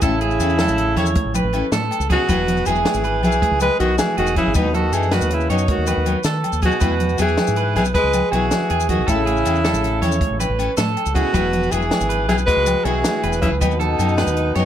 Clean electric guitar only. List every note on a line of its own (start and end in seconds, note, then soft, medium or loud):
0.03 0.21 A4 medium
0.21 0.57 G#4 medium
0.60 0.96 A4 medium
0.97 1.33 C#5 medium
1.35 1.71 B4 medium
1.73 2.09 A4 medium
2.10 2.28 G#4 medium
2.29 2.65 B4 medium
2.67 3.03 G#4 medium
3.04 3.40 B4 medium
3.42 3.78 G#4 medium
3.80 4.16 F#4 medium
4.17 4.53 G#4 medium
4.56 4.74 B4 medium
4.74 5.10 A4 medium
5.12 5.48 B4 medium
5.50 5.86 C#5 medium
5.88 6.23 B4 medium
6.26 6.61 A4 medium
6.62 6.80 G#4 medium
6.81 7.17 B4 medium
7.19 7.55 G#4 medium
7.57 7.93 B4 medium
7.94 8.30 G#4 medium
8.32 8.68 F#4 medium
8.70 9.06 G#4 medium
9.07 9.25 A4 medium
9.26 9.62 G#4 medium
9.65 10.01 A4 medium
10.02 10.38 C#5 medium
10.40 10.76 B4 medium
10.77 11.14 A4 medium
11.15 11.34 G#4 medium
11.34 11.70 B4 medium
11.72 12.08 G#4 medium
12.09 12.46 B4 medium
12.47 12.84 F#4 medium
12.85 13.21 F#4 medium
13.24 13.59 B4 medium
13.61 13.79 B4 medium
13.80 14.16 A4 medium
14.18 14.54 B4 medium
14.56 14.65 C#5 medium